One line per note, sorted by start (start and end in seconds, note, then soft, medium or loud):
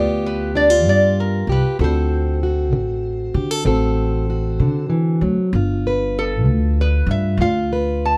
0.00 0.87 D2 medium
0.00 0.50 G2 medium
0.00 1.77 B3 medium
0.00 0.55 F4 medium
0.00 1.48 G4 medium
0.00 0.28 D5 loud
0.26 0.55 B4 medium
0.55 0.70 D4 medium
0.55 0.88 D5 medium
0.70 1.79 F4 soft
0.86 1.42 G2 medium
0.86 1.17 D5 medium
1.20 1.51 A#4 medium
1.47 1.62 C2 medium
1.47 1.80 G4 medium
1.52 1.79 B4 medium
1.79 2.72 D2 medium
1.79 2.35 D3 medium
1.79 3.64 C4 medium
1.79 2.42 F#4 medium
1.79 3.34 A4 medium
1.84 4.88 C5 medium
2.43 3.65 F#4 soft
2.72 3.28 A1 medium
2.72 3.29 D3 medium
3.34 3.62 D3 medium
3.34 3.51 G4 medium
3.51 3.66 A4 medium
3.65 4.61 A1 medium
3.65 4.21 D3 medium
3.65 5.49 C4 medium
3.65 4.28 F#4 medium
3.65 5.49 A4 medium
4.30 5.50 F#4 medium
4.60 5.14 D3 medium
4.60 4.89 D3 medium
4.90 5.21 E3 medium
5.21 5.35 D2 medium
5.21 5.53 F#3 medium
5.53 6.45 G1 medium
5.53 6.10 G2 medium
5.53 7.09 F4 medium
5.87 7.71 B4 medium
6.19 6.77 A4 medium
6.45 7.01 D2 medium
6.45 7.02 G2 medium
6.81 7.09 B4 medium
7.06 7.35 G2 medium
7.06 7.40 F4 soft
7.11 7.40 E5 medium
7.37 8.18 D2 medium
7.37 7.96 G2 medium
7.37 8.18 F4 medium
7.41 7.71 F5 medium
7.73 8.18 B4 medium
8.05 8.18 A5 medium